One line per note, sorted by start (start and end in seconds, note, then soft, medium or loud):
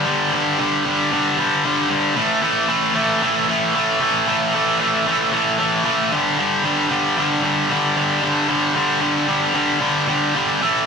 0.05 0.31 G2 loud
0.05 0.32 D3 loud
0.05 0.32 G3 loud
0.32 0.58 G2 medium
0.32 0.58 D3 medium
0.32 0.59 G3 medium
0.59 0.84 G2 medium
0.59 0.85 D3 loud
0.59 0.85 G3 medium
0.85 1.11 G2 medium
0.85 1.11 D3 medium
0.85 1.12 G3 loud
1.12 1.37 G2 loud
1.12 1.37 D3 medium
1.12 1.38 G3 loud
1.38 1.63 G2 medium
1.38 1.64 D3 medium
1.38 1.64 G3 medium
1.65 1.89 G2 medium
1.65 1.90 D3 medium
1.65 1.90 G3 loud
1.90 2.15 G2 medium
1.90 2.15 D3 medium
1.90 2.15 G3 loud
2.16 2.41 A2 medium
2.16 2.41 E3 medium
2.16 2.42 A3 loud
2.41 2.68 A2 medium
2.41 2.68 E3 medium
2.41 2.69 A3 medium
2.68 2.93 A2 medium
2.68 2.94 E3 medium
2.68 2.94 A3 medium
2.95 3.20 A2 medium
2.95 3.21 E3 medium
2.95 3.21 A3 loud
3.21 3.47 A2 medium
3.21 3.48 E3 loud
3.21 3.48 A3 loud
3.48 3.74 A2 medium
3.48 3.74 E3 loud
3.48 3.75 A3 medium
3.75 3.99 A2 medium
3.75 4.00 E3 medium
3.75 4.00 A3 medium
4.00 4.26 A2 medium
4.00 4.26 E3 loud
4.00 4.27 A3 medium
4.27 4.53 A2 loud
4.27 4.53 E3 loud
4.27 4.54 A3 loud
4.54 4.79 A2 medium
4.54 4.79 E3 medium
4.54 4.79 A3 medium
4.80 5.06 A2 medium
4.80 5.06 E3 loud
4.80 5.06 A3 loud
5.07 5.31 A2 medium
5.07 5.32 E3 medium
5.07 5.32 A3 loud
5.32 5.57 A2 loud
5.32 5.59 E3 loud
5.32 5.59 A3 loud
5.58 5.83 A2 medium
5.58 5.84 E3 medium
5.58 5.84 A3 medium
5.85 6.10 A2 medium
5.85 6.10 E3 medium
5.85 6.10 A3 loud
6.12 6.37 G2 medium
6.12 6.37 D3 loud
6.12 6.38 G3 loud
6.38 6.64 G2 loud
6.38 6.63 D3 loud
6.38 6.65 G3 loud
6.64 6.90 G2 medium
6.64 6.89 D3 medium
6.64 6.91 G3 loud
6.90 7.17 G2 medium
6.90 7.16 D3 medium
6.90 7.17 G3 loud
7.17 7.41 G2 loud
7.17 7.42 D3 medium
7.17 7.42 G3 medium
7.42 7.69 G2 loud
7.42 7.70 D3 loud
7.42 7.70 G3 loud
7.70 7.95 G2 medium
7.70 7.95 D3 medium
7.70 7.96 G3 medium
7.96 8.21 G2 medium
7.96 8.22 D3 medium
7.96 8.22 G3 medium
8.22 8.47 G2 medium
8.22 8.48 D3 medium
8.22 8.48 G3 loud
8.48 8.74 G2 loud
8.48 8.75 D3 loud
8.48 8.75 G3 loud
8.76 9.00 G2 medium
8.76 9.00 D3 medium
8.76 9.01 G3 medium
9.01 9.26 G2 medium
9.01 9.27 D3 loud
9.01 9.28 G3 medium
9.27 9.53 G2 medium
9.27 9.53 D3 medium
9.27 9.54 G3 loud
9.54 9.79 G2 medium
9.54 9.79 D3 loud
9.54 9.80 G3 loud
9.80 10.06 G2 loud
9.80 10.07 D3 medium
9.80 10.07 G3 medium
10.08 10.33 G2 medium
10.08 10.34 D3 medium
10.08 10.35 G3 medium
10.35 10.59 G2 medium
10.35 10.60 D3 medium
10.35 10.60 G3 loud
10.61 10.86 A2 medium
10.61 10.86 E3 loud
10.61 10.86 A3 loud